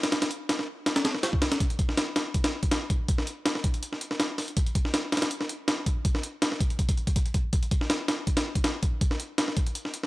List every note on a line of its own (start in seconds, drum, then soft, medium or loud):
0.03 snare loud
0.03 closed hi-hat medium
0.12 snare loud
0.12 closed hi-hat medium
0.22 snare loud
0.22 closed hi-hat medium
0.31 closed hi-hat medium
0.49 snare loud
0.49 closed hi-hat medium
0.59 snare medium
0.86 snare loud
0.86 closed hi-hat medium
0.96 snare loud
0.96 closed hi-hat medium
1.05 snare loud
1.05 closed hi-hat medium
1.15 snare medium
1.23 snare loud
1.23 closed hi-hat medium
1.33 kick medium
1.42 snare loud
1.42 closed hi-hat medium
1.52 snare loud
1.52 closed hi-hat medium
1.60 kick loud
1.60 closed hi-hat medium
1.70 closed hi-hat soft
1.79 kick loud
1.79 closed hi-hat medium
1.89 snare soft
1.97 snare loud
1.97 closed hi-hat medium
2.16 snare loud
2.16 closed hi-hat medium
2.34 kick medium
2.34 closed hi-hat medium
2.44 snare loud
2.44 closed hi-hat medium
2.63 kick medium
2.63 closed hi-hat medium
2.71 snare loud
2.71 closed hi-hat medium
2.90 kick loud
2.90 closed hi-hat medium
3.08 kick loud
3.08 closed hi-hat medium
3.18 snare medium
3.27 closed hi-hat medium
3.46 snare loud
3.46 closed hi-hat medium
3.55 snare medium
3.64 kick loud
3.64 closed hi-hat medium
3.74 closed hi-hat soft
3.83 closed hi-hat medium
3.93 snare soft
4.01 closed hi-hat medium
4.11 snare medium
4.20 snare loud
4.20 closed hi-hat medium
4.38 snare soft
4.38 open hi-hat medium
4.48 closed hi-hat soft
4.57 kick loud
4.57 closed hi-hat medium
4.67 closed hi-hat soft
4.75 kick loud
4.75 closed hi-hat medium
4.85 snare soft
4.94 snare loud
4.94 closed hi-hat medium
5.12 snare medium
5.12 closed hi-hat medium
5.17 snare medium
5.17 closed hi-hat medium
5.22 snare loud
5.22 closed hi-hat medium
5.31 closed hi-hat medium
5.41 snare medium
5.49 closed hi-hat medium
5.68 snare loud
5.68 closed hi-hat medium
5.86 kick loud
5.86 closed hi-hat medium
6.05 kick loud
6.05 closed hi-hat medium
6.15 snare medium
6.23 closed hi-hat medium
6.42 snare loud
6.42 closed hi-hat medium
6.52 snare medium
6.60 kick loud
6.60 closed hi-hat medium
6.70 closed hi-hat soft
6.79 kick medium
6.79 closed hi-hat medium
6.89 kick loud
6.89 closed hi-hat medium
6.97 closed hi-hat soft
7.07 kick medium
7.07 closed hi-hat medium
7.16 kick loud
7.16 closed hi-hat medium
7.26 closed hi-hat soft
7.34 kick medium
7.34 closed hi-hat medium
7.53 kick loud
7.53 closed hi-hat medium
7.63 closed hi-hat soft
7.71 kick loud
7.71 closed hi-hat medium
7.81 snare soft
7.90 snare loud
7.90 closed hi-hat medium
8.08 snare loud
8.08 closed hi-hat medium
8.27 kick medium
8.27 closed hi-hat medium
8.37 snare loud
8.37 closed hi-hat medium
8.55 kick medium
8.55 closed hi-hat medium
8.64 snare loud
8.64 closed hi-hat medium
8.83 kick loud
8.83 closed hi-hat medium
9.01 kick loud
9.01 closed hi-hat medium
9.11 snare medium
9.20 closed hi-hat medium
9.38 snare loud
9.38 closed hi-hat medium
9.48 snare medium
9.57 kick loud
9.57 closed hi-hat medium
9.66 closed hi-hat soft
9.75 closed hi-hat medium
9.85 snare soft
9.94 closed hi-hat medium
10.03 snare medium